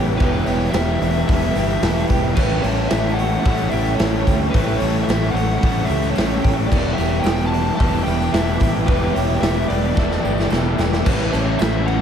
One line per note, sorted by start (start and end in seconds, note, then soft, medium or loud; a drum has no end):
0.00 0.15 A1 medium
0.00 0.17 E2 medium
0.00 0.18 B2 medium
0.00 0.17 E3 medium
0.00 0.20 E3 medium
0.00 0.19 G3 medium
0.00 0.19 B3 medium
0.00 0.21 E4 medium
0.00 0.48 G4 medium
0.00 2.33 B4 medium
0.00 6.67 E5 medium
0.00 6.66 G5 medium
0.06 tambourine soft
0.17 0.42 E1 medium
0.17 1.26 E2 loud
0.17 1.27 B2 medium
0.17 0.73 E3 medium
0.17 1.29 E3 loud
0.17 0.73 G3 medium
0.17 0.74 B3 loud
0.17 0.46 B4 medium
0.17 kick loud
0.17 open hi-hat medium
0.17 tambourine soft
0.21 0.75 E4 loud
0.33 tambourine soft
0.45 0.69 E1 medium
0.45 1.32 G4 medium
0.45 0.71 C#5 medium
0.45 open hi-hat medium
0.45 tambourine medium
0.60 tambourine soft
0.72 0.96 E1 medium
0.72 1.25 E3 medium
0.72 1.26 G3 medium
0.72 1.27 B3 medium
0.72 1.26 E5 medium
0.72 snare loud
0.72 open hi-hat medium
0.72 tambourine loud
0.76 1.28 E4 medium
0.86 tambourine soft
1.01 1.23 E1 medium
1.01 1.28 B4 medium
1.01 open hi-hat medium
1.01 tambourine soft
1.15 tambourine soft
1.25 1.51 E1 loud
1.25 2.35 E2 medium
1.25 2.35 B2 medium
1.25 1.82 E3 medium
1.25 1.56 G3 medium
1.25 1.55 B3 loud
1.25 1.54 E4 loud
1.25 1.56 A4 medium
1.25 2.05 E5 medium
1.25 kick loud
1.25 tambourine soft
1.29 2.36 E3 medium
1.29 open hi-hat medium
1.42 tambourine soft
1.54 1.78 G1 medium
1.54 1.81 E3 medium
1.54 1.83 G3 medium
1.54 1.83 B3 medium
1.54 1.85 E4 medium
1.54 1.84 G4 medium
1.54 open hi-hat medium
1.54 tambourine medium
1.70 tambourine medium
1.82 2.05 E1 loud
1.82 2.37 E3 medium
1.82 2.37 G3 medium
1.82 2.36 B3 medium
1.82 2.39 E4 medium
1.82 2.10 A4 loud
1.82 snare loud
1.82 open hi-hat medium
1.82 tambourine loud
1.97 tambourine soft
2.09 2.32 E1 medium
2.09 2.63 G4 medium
2.09 kick medium
2.09 open hi-hat medium
2.09 tambourine medium
2.35 2.60 A1 medium
2.35 3.44 A2 medium
2.35 3.46 E3 loud
2.35 2.89 E3 loud
2.35 2.90 G3 medium
2.35 3.46 A3 loud
2.35 2.91 C#4 medium
2.35 6.68 A4 medium
2.35 2.64 B4 medium
2.35 6.67 C#6 medium
2.35 kick loud
2.35 crash loud
2.35 tambourine soft
2.40 2.92 E4 medium
2.50 tambourine soft
2.63 2.86 A1 medium
2.63 3.45 A4 medium
2.63 2.88 C#5 medium
2.63 open hi-hat medium
2.63 tambourine medium
2.77 tambourine soft
2.89 3.36 A1 medium
2.89 3.45 E3 medium
2.89 3.46 G3 medium
2.89 3.45 C#4 medium
2.89 3.18 E5 medium
2.89 snare loud
2.89 open hi-hat medium
2.89 tambourine medium
2.93 3.47 E4 medium
3.03 tambourine soft
3.14 3.39 F#5 medium
3.18 3.75 C#5 medium
3.18 open hi-hat medium
3.32 tambourine soft
3.41 3.99 A2 medium
3.41 4.51 A2 medium
3.41 3.71 F#5 medium
3.41 tambourine soft
3.45 3.68 A1 loud
3.45 3.98 E3 medium
3.45 4.54 E3 medium
3.45 3.74 G3 medium
3.45 4.53 A3 medium
3.45 3.72 C#4 medium
3.45 3.71 E4 medium
3.45 3.72 A4 medium
3.45 kick loud
3.45 open hi-hat medium
3.58 tambourine soft
3.69 3.95 A1 medium
3.69 3.99 E3 medium
3.69 4.00 C#4 medium
3.69 4.02 E4 medium
3.69 3.97 G4 medium
3.69 3.95 E5 medium
3.69 open hi-hat medium
3.69 tambourine medium
3.74 3.97 A2 medium
3.74 3.99 G3 medium
3.86 tambourine medium
3.96 4.22 A1 loud
3.96 4.52 A2 medium
3.96 4.55 E3 medium
3.96 4.25 A4 loud
3.96 4.35 C#5 loud
3.96 open hi-hat medium
3.96 tambourine medium
4.00 4.55 G3 medium
4.00 4.55 C#4 medium
4.00 4.56 E4 medium
4.00 snare loud
4.25 4.49 D2 loud
4.25 4.79 G4 medium
4.25 kick medium
4.25 open hi-hat medium
4.25 tambourine medium
4.42 tambourine soft
4.51 4.77 A1 medium
4.51 5.60 A2 medium
4.51 5.35 A2 loud
4.51 5.62 E3 medium
4.51 4.80 B4 medium
4.51 kick loud
4.55 5.08 E3 medium
4.55 5.09 G3 medium
4.55 5.61 A3 medium
4.55 5.09 C#4 medium
4.55 5.10 E4 loud
4.55 open hi-hat medium
4.55 tambourine soft
4.68 tambourine soft
4.78 5.04 A1 loud
4.78 5.35 A4 medium
4.78 5.04 C#5 medium
4.78 tambourine medium
4.82 open hi-hat medium
4.96 tambourine soft
5.04 5.34 E5 medium
5.08 5.31 A1 medium
5.08 5.62 E3 medium
5.08 5.62 G3 medium
5.08 5.62 C#4 medium
5.08 5.64 E4 medium
5.08 snare loud
5.08 open hi-hat medium
5.08 tambourine medium
5.23 tambourine soft
5.30 5.57 A1 medium
5.30 5.58 F#5 medium
5.35 5.62 C#5 medium
5.35 open hi-hat medium
5.50 tambourine soft
5.59 5.85 A1 loud
5.59 6.69 A2 medium
5.59 6.16 A2 loud
5.59 6.73 E3 medium
5.59 6.14 E3 loud
5.59 5.90 G3 loud
5.59 5.88 C#4 loud
5.59 5.88 A4 medium
5.59 5.89 F#5 medium
5.59 tambourine soft
5.63 6.70 A3 medium
5.63 5.87 E4 loud
5.63 kick loud
5.63 open hi-hat loud
5.75 tambourine soft
5.85 6.17 E4 medium
5.85 6.15 G4 medium
5.85 6.10 E5 loud
5.89 6.12 C#2 loud
5.89 6.13 A2 medium
5.89 6.15 E3 medium
5.89 6.15 G3 medium
5.89 6.15 C#4 medium
5.89 open hi-hat medium
5.89 tambourine medium
6.02 tambourine medium
6.11 6.68 A2 medium
6.11 6.68 E3 medium
6.11 6.51 C#5 loud
6.15 6.39 A1 medium
6.15 6.70 G3 medium
6.15 6.69 C#4 medium
6.15 6.72 E4 medium
6.15 6.42 A4 loud
6.15 snare loud
6.15 open hi-hat medium
6.15 tambourine medium
6.43 6.67 A1 medium
6.43 6.98 G4 medium
6.43 kick loud
6.43 open hi-hat medium
6.57 tambourine soft
6.67 7.78 E2 loud
6.67 7.24 E3 loud
6.67 7.25 G3 medium
6.67 6.93 D5 loud
6.71 6.94 E1 medium
6.71 7.79 B2 loud
6.71 7.80 E3 loud
6.71 7.26 B3 loud
6.71 7.27 E4 loud
6.71 11.01 B4 medium
6.71 11.02 E5 medium
6.71 11.01 G5 medium
6.71 11.01 D6 medium
6.71 kick loud
6.71 crash loud
6.71 tambourine soft
6.85 tambourine soft
6.94 7.21 E5 loud
6.98 7.21 E1 medium
6.98 7.82 G4 medium
6.98 open hi-hat medium
6.98 tambourine medium
7.11 tambourine soft
7.20 7.46 G5 medium
7.24 7.70 E1 loud
7.24 7.76 E3 medium
7.24 7.78 G3 medium
7.24 7.78 B3 medium
7.24 7.79 E4 loud
7.24 snare loud
7.24 open hi-hat medium
7.24 tambourine medium
7.46 7.75 A5 loud
7.53 7.78 B4 medium
7.53 open hi-hat medium
7.67 tambourine soft
7.76 8.02 E1 loud
7.76 8.85 E2 medium
7.76 8.86 B2 medium
7.76 8.31 E3 medium
7.76 8.07 G3 medium
7.76 8.05 B3 medium
7.76 8.05 E4 loud
7.76 8.06 A4 medium
7.76 8.03 A5 loud
7.80 8.88 E3 medium
7.80 kick loud
7.80 open hi-hat medium
7.80 tambourine soft
7.95 tambourine soft
8.03 8.29 E1 loud
8.03 8.33 B3 medium
8.03 8.34 E4 medium
8.03 8.33 G5 loud
8.03 tambourine medium
8.07 8.32 E3 medium
8.07 8.32 G3 medium
8.07 8.36 G4 medium
8.07 open hi-hat medium
8.22 tambourine medium
8.31 8.56 E1 medium
8.31 8.85 E3 medium
8.31 8.86 G3 medium
8.31 8.87 B3 medium
8.31 8.88 E4 medium
8.31 8.61 A4 loud
8.31 8.71 E5 loud
8.31 snare loud
8.31 open hi-hat medium
8.36 tambourine medium
8.60 8.84 A1 medium
8.60 9.15 G4 medium
8.60 kick medium
8.60 open hi-hat medium
8.60 tambourine medium
8.77 tambourine soft
8.86 9.10 E1 medium
8.86 9.94 E2 loud
8.86 9.95 B2 medium
8.86 9.39 E3 loud
8.86 9.95 E3 loud
8.86 9.41 G3 loud
8.86 9.42 B3 loud
8.86 9.42 E4 loud
8.86 9.15 B4 loud
8.86 kick loud
8.86 open hi-hat medium
8.86 tambourine soft
9.04 tambourine soft
9.14 9.38 E1 medium
9.14 9.69 G4 medium
9.14 9.41 C#5 medium
9.14 open hi-hat medium
9.14 tambourine medium
9.32 tambourine soft
9.40 9.64 E1 medium
9.40 9.94 E3 medium
9.40 9.94 G3 medium
9.40 9.96 B3 medium
9.40 9.97 E4 medium
9.40 9.69 E5 medium
9.40 snare loud
9.40 open hi-hat medium
9.40 tambourine loud
9.69 9.92 E1 medium
9.69 9.95 B4 medium
9.69 10.47 D5 medium
9.69 open hi-hat medium
9.69 tambourine soft
9.85 tambourine soft
9.95 10.19 E1 medium
9.95 11.03 E2 medium
9.95 11.03 B2 medium
9.95 10.49 E3 medium
9.95 11.04 E3 medium
9.95 10.25 G3 loud
9.95 10.23 B3 loud
9.95 10.21 E4 loud
9.95 10.23 A4 medium
9.95 kick loud
9.95 snare medium
10.11 snare medium
10.11 tambourine soft
10.23 10.47 G1 medium
10.23 10.48 E3 medium
10.23 10.49 G3 medium
10.23 10.51 B3 medium
10.23 10.52 E4 medium
10.23 10.50 G4 medium
10.23 tambourine medium
10.38 snare medium
10.38 tambourine medium
10.50 10.74 E1 loud
10.50 11.04 E3 medium
10.50 11.04 G3 medium
10.50 11.04 B3 medium
10.50 11.05 E4 medium
10.50 10.77 A4 medium
10.50 snare medium
10.50 tambourine loud
10.65 tambourine soft
10.77 11.01 E1 medium
10.77 11.05 G4 medium
10.77 snare loud
10.77 tambourine medium
10.93 snare medium
10.93 tambourine soft
11.04 11.29 A1 medium
11.04 12.02 A2 loud
11.04 12.02 A2 medium
11.04 12.02 E3 loud
11.04 11.60 E3 loud
11.04 11.61 G3 loud
11.04 12.02 A3 medium
11.04 11.62 C#4 medium
11.04 11.63 E4 loud
11.04 12.02 A4 medium
11.04 11.33 B4 loud
11.04 12.02 E5 medium
11.04 12.02 G5 medium
11.04 12.02 C#6 medium
11.04 kick loud
11.04 crash loud
11.04 crash medium
11.18 tambourine soft
11.32 11.55 A1 medium
11.32 12.02 A4 medium
11.32 11.58 C#5 medium
11.32 tambourine medium
11.32 crash medium
11.47 tambourine soft
11.59 12.02 A1 medium
11.59 12.02 E3 medium
11.59 12.02 G3 medium
11.59 11.87 E5 medium
11.59 snare loud
11.59 tambourine loud
11.59 crash medium
11.63 12.02 C#4 medium
11.63 12.02 E4 loud
11.73 tambourine soft
11.86 12.02 C#5 medium
11.86 12.02 F#5 loud
11.86 crash medium